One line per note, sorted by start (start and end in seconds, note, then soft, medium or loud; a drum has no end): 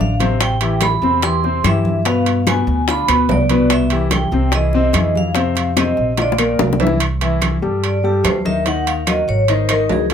0.00 0.96 A1 medium
0.00 0.13 D3 medium
0.00 0.13 D4 medium
0.00 0.13 D5 medium
0.00 0.38 F5 medium
0.20 0.54 C3 medium
0.20 0.54 C4 medium
0.20 0.54 C5 medium
0.20 high conga medium
0.20 high timbale medium
0.41 0.80 G5 loud
0.41 high bongo medium
0.41 high conga soft
0.41 high timbale loud
0.41 claves medium
0.61 0.95 E3 medium
0.61 0.95 E4 medium
0.61 0.95 G4 medium
0.61 high bongo soft
0.61 high conga soft
0.61 high timbale medium
0.81 1.20 B5 medium
0.81 high bongo medium
0.81 high conga medium
0.81 high timbale medium
0.81 claves medium
1.02 1.60 E2 medium
1.02 1.19 C3 medium
1.02 1.20 C4 medium
1.02 1.20 C5 medium
1.02 high bongo soft
1.02 high conga soft
1.22 1.40 E3 medium
1.22 1.40 E4 medium
1.22 1.40 G4 medium
1.22 1.66 C6 loud
1.22 high bongo medium
1.22 high conga soft
1.22 high timbale medium
1.43 1.61 C3 medium
1.43 1.61 C4 medium
1.43 1.61 C5 medium
1.43 high bongo soft
1.43 high conga soft
1.64 2.61 G2 medium
1.64 1.98 E3 medium
1.64 1.98 E4 medium
1.64 1.99 G4 medium
1.64 2.03 E5 medium
1.64 high bongo soft
1.64 low bongo medium
1.64 high conga medium
1.64 high timbale medium
1.64 claves medium
1.85 high conga medium
2.05 2.39 B2 medium
2.05 2.39 B3 medium
2.05 2.40 B4 medium
2.05 2.44 F5 medium
2.05 high bongo medium
2.05 high conga soft
2.05 high timbale medium
2.26 high bongo soft
2.26 high conga soft
2.26 high timbale medium
2.47 2.81 B2 medium
2.47 2.81 B3 medium
2.47 2.81 B4 medium
2.47 2.90 G#5 loud
2.47 high bongo medium
2.47 high conga loud
2.47 high timbale medium
2.47 claves medium
2.67 3.05 D2 medium
2.67 high bongo soft
2.87 3.05 D3 medium
2.87 3.05 D4 medium
2.87 3.05 F4 medium
2.87 3.27 B5 loud
2.87 high bongo medium
2.87 high conga soft
2.87 high timbale medium
3.08 3.28 D2 medium
3.08 3.42 B2 medium
3.08 3.42 B3 medium
3.08 3.42 B4 medium
3.08 high bongo soft
3.08 high conga soft
3.08 high timbale loud
3.08 claves medium
3.29 4.26 C2 medium
3.29 3.73 D5 medium
3.29 high bongo soft
3.29 low bongo medium
3.29 high conga medium
3.29 low timbale medium
3.50 3.84 B2 medium
3.50 3.84 B3 medium
3.50 3.84 B4 medium
3.50 high conga medium
3.50 high timbale medium
3.70 4.10 E5 loud
3.70 high bongo medium
3.70 high conga soft
3.70 high timbale medium
3.70 claves medium
3.90 4.25 E3 medium
3.90 4.25 E4 medium
3.90 4.26 G4 medium
3.90 high bongo soft
3.90 high conga soft
3.90 high timbale medium
4.11 4.51 G5 medium
4.11 high bongo medium
4.11 high conga loud
4.11 high timbale medium
4.11 claves medium
4.32 4.90 C2 medium
4.32 4.49 C3 medium
4.32 4.50 C4 medium
4.32 4.50 C5 medium
4.32 high bongo soft
4.32 high conga soft
4.52 4.71 E3 medium
4.52 4.71 E4 medium
4.52 4.71 G#4 medium
4.52 5.18 D#5 medium
4.52 high bongo medium
4.52 high conga soft
4.52 high timbale medium
4.73 4.91 C3 medium
4.73 4.91 C4 medium
4.73 4.91 C5 medium
4.73 high bongo soft
4.73 high conga soft
4.93 5.91 F2 medium
4.93 5.29 E3 medium
4.93 5.29 E4 medium
4.93 5.29 G#4 medium
4.93 high bongo soft
4.93 low bongo medium
4.93 high conga medium
4.93 high timbale medium
4.93 claves medium
5.15 5.74 F5 medium
5.15 high conga medium
5.35 5.70 C3 medium
5.35 5.70 C4 medium
5.35 5.70 C5 medium
5.35 high bongo medium
5.35 high conga soft
5.35 high timbale medium
5.55 high bongo soft
5.55 high conga soft
5.55 high timbale medium
5.76 6.10 C3 medium
5.76 6.11 C4 medium
5.76 6.11 C5 medium
5.76 6.20 D#5 medium
5.76 high bongo medium
5.76 high conga medium
5.76 high timbale medium
5.76 claves medium
5.97 6.56 A#1 medium
5.97 high bongo soft
6.17 6.35 D3 medium
6.17 6.35 D4 medium
6.17 6.35 F4 medium
6.17 high bongo medium
6.17 high conga soft
6.17 high timbale medium
6.22 6.78 D5 medium
6.32 high bongo medium
6.38 6.72 A#2 medium
6.38 6.73 A#3 medium
6.38 6.73 A#4 medium
6.38 high conga soft
6.38 high timbale medium
6.38 claves medium
6.59 7.57 C2 medium
6.59 low bongo loud
6.59 high conga medium
6.59 low timbale medium
6.73 low bongo medium
6.80 6.97 E3 medium
6.80 6.97 E4 medium
6.80 6.98 E5 medium
6.80 high conga medium
6.80 high timbale loud
6.87 low bongo medium
7.00 high conga soft
7.00 high timbale loud
7.00 claves medium
7.21 7.56 E3 medium
7.21 7.56 E4 medium
7.21 7.56 E5 medium
7.21 high conga soft
7.21 high timbale medium
7.41 high conga medium
7.41 high timbale medium
7.41 claves medium
7.62 8.21 G2 medium
7.62 7.97 G3 medium
7.62 7.96 G4 medium
7.62 7.97 A4 medium
7.62 high conga soft
7.83 8.04 D5 medium
7.83 high conga soft
7.83 high timbale medium
8.03 8.38 G3 medium
8.03 8.38 G4 medium
8.03 8.25 G4 medium
8.03 8.38 A4 medium
8.03 high conga soft
8.24 9.22 D#2 medium
8.24 8.45 C5 medium
8.24 high conga medium
8.24 high timbale medium
8.24 low timbale medium
8.24 claves medium
8.45 8.62 D#3 medium
8.45 8.62 D#4 medium
8.45 8.63 D#5 medium
8.45 8.66 E5 medium
8.45 high conga medium
8.66 9.00 D#3 medium
8.66 9.00 D#4 medium
8.66 9.00 D#5 medium
8.66 8.87 F#5 medium
8.66 high conga soft
8.66 high timbale medium
8.86 9.07 F5 medium
8.86 high conga soft
8.86 high timbale medium
9.07 9.41 F#3 medium
9.07 9.42 F#4 medium
9.07 9.42 A#4 medium
9.07 9.28 D#5 medium
9.07 high conga medium
9.07 high timbale medium
9.07 claves medium
9.28 9.86 G#1 medium
9.28 9.49 C#5 medium
9.48 9.66 D#3 medium
9.48 9.66 D#4 medium
9.48 9.70 C5 medium
9.48 9.66 D#5 medium
9.48 high conga soft
9.48 high timbale medium
9.69 10.04 D#3 medium
9.69 10.04 D#4 medium
9.69 9.90 A#4 medium
9.69 10.04 D#5 medium
9.69 high conga soft
9.69 high timbale medium
9.69 claves medium
9.89 10.14 C#2 medium
9.89 10.12 G#4 medium
9.89 high conga medium
9.89 low timbale medium
10.10 high conga medium
10.10 high timbale medium